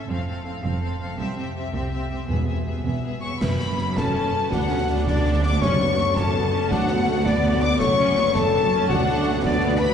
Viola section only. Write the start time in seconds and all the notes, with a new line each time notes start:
0.08 C4
0.27 C4
0.46 C4
0.63 C4
0.82 C4
1.01 C4
1.19 C4
1.38 C4
1.56 C4
1.74 C4
1.93 C4
2.11 C4
2.28 B3
2.48 B3
2.66 B3
2.84 B3
3.04 B3
3.22 B3
3.96 C#4
4.51 D4
4.70 C#4
4.87 D4
5.61 C#4
5.80 B3
5.98 A3
6.17 C#4
6.34 B3
6.52 C#4
6.71 D4
6.88 B3
7.06 A3
7.24 B3
7.78 A3
7.97 C#4
8.16 B3
8.35 A3
8.53 B3
8.72 C#4
8.90 D4
9.44 B3